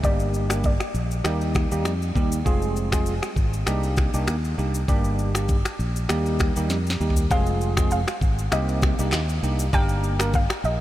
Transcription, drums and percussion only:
0.04 kick loud
0.04 shaker medium
0.20 shaker medium
0.34 shaker medium
0.50 finger snap medium
0.50 cross-stick loud
0.50 shaker medium
0.64 kick loud
0.64 shaker medium
0.80 finger snap medium
0.80 cross-stick medium
0.80 shaker soft
0.95 shaker soft
1.11 shaker medium
1.24 finger snap medium
1.24 cross-stick loud
1.24 shaker medium
1.41 shaker soft
1.55 finger snap medium
1.55 kick medium
1.55 cross-stick loud
1.55 shaker medium
1.72 shaker medium
1.85 finger snap medium
1.85 cross-stick medium
1.85 shaker medium
2.02 shaker soft
2.16 kick loud
2.16 shaker soft
2.32 shaker loud
2.46 kick loud
2.46 shaker medium
2.62 shaker medium
2.76 shaker medium
2.92 finger snap medium
2.92 kick medium
2.92 cross-stick loud
2.92 shaker medium
3.06 shaker medium
3.23 finger snap medium
3.23 cross-stick medium
3.23 shaker soft
3.36 kick medium
3.36 shaker soft
3.53 shaker medium
3.67 finger snap medium
3.67 cross-stick medium
3.67 shaker medium
3.83 shaker soft
3.97 finger snap medium
3.97 kick medium
3.97 cross-stick medium
3.97 shaker medium
4.14 shaker medium
4.27 finger snap medium
4.27 cross-stick medium
4.27 shaker medium
4.44 shaker soft
4.59 shaker soft
4.74 shaker loud
4.88 kick loud
4.88 shaker medium
5.04 shaker medium
5.19 shaker medium
5.35 finger snap medium
5.35 cross-stick loud
5.35 shaker loud
5.49 kick loud
5.49 shaker medium
5.65 finger snap medium
5.65 cross-stick medium
5.65 shaker soft
5.80 shaker soft
5.96 shaker medium
6.09 finger snap medium
6.09 cross-stick medium
6.09 shaker medium
6.26 shaker soft
6.39 finger snap medium
6.39 kick medium
6.39 cross-stick medium
6.39 shaker medium
6.56 shaker medium
6.70 snare medium
6.70 shaker medium
6.87 snare medium
6.87 shaker medium
7.01 shaker soft
7.10 floor tom loud
7.17 shaker loud
7.31 kick loud
7.31 shaker medium
7.46 shaker medium
7.61 shaker medium
7.77 finger snap medium
7.77 kick loud
7.77 cross-stick loud
7.77 shaker medium
7.91 shaker medium
8.08 finger snap medium
8.08 cross-stick medium
8.08 shaker soft
8.21 kick medium
8.21 shaker soft
8.39 shaker medium
8.52 finger snap medium
8.52 cross-stick loud
8.52 shaker medium
8.69 shaker soft
8.82 finger snap medium
8.82 kick medium
8.82 cross-stick loud
8.82 shaker medium
8.99 shaker medium
9.13 finger snap medium
9.13 cross-stick loud
9.13 clap loud
9.13 shaker medium
9.29 shaker medium
9.44 shaker medium
9.59 shaker loud
9.73 kick loud
9.73 shaker medium
9.89 shaker medium
10.04 shaker medium
10.19 finger snap medium
10.19 cross-stick loud
10.19 shaker medium
10.33 kick loud
10.33 shaker medium
10.50 finger snap medium
10.50 cross-stick loud
10.50 shaker soft
10.64 shaker soft

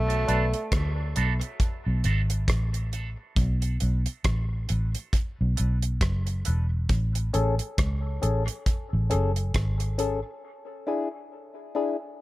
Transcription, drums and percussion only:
0.10 closed hi-hat soft
0.28 closed hi-hat medium
0.54 closed hi-hat medium
0.72 kick loud
0.72 cross-stick loud
0.72 closed hi-hat medium
1.16 closed hi-hat medium
1.41 closed hi-hat medium
1.60 kick loud
1.60 closed hi-hat medium
2.04 closed hi-hat medium
2.30 closed hi-hat medium
2.48 kick loud
2.48 cross-stick loud
2.48 closed hi-hat medium
2.74 closed hi-hat soft
2.93 closed hi-hat medium
3.36 kick loud
3.36 closed hi-hat medium
3.62 closed hi-hat medium
3.80 closed hi-hat medium
4.06 closed hi-hat medium
4.24 kick loud
4.24 cross-stick loud
4.24 closed hi-hat medium
4.69 closed hi-hat medium
4.95 closed hi-hat medium
5.13 kick loud
5.13 closed hi-hat medium
5.57 closed hi-hat medium
5.82 closed hi-hat medium
6.01 kick loud
6.01 cross-stick loud
6.01 closed hi-hat medium
6.27 closed hi-hat soft
6.45 closed hi-hat medium
6.89 kick loud
6.89 closed hi-hat medium
7.15 closed hi-hat medium
7.34 closed hi-hat medium
7.59 closed hi-hat medium
7.78 kick loud
7.78 cross-stick loud
7.78 closed hi-hat medium
8.23 closed hi-hat medium
8.48 closed hi-hat medium
8.66 kick medium
8.66 closed hi-hat medium
9.11 closed hi-hat medium
9.36 closed hi-hat medium
9.54 kick loud
9.54 cross-stick loud
9.54 closed hi-hat medium
9.80 closed hi-hat soft
9.99 closed hi-hat medium

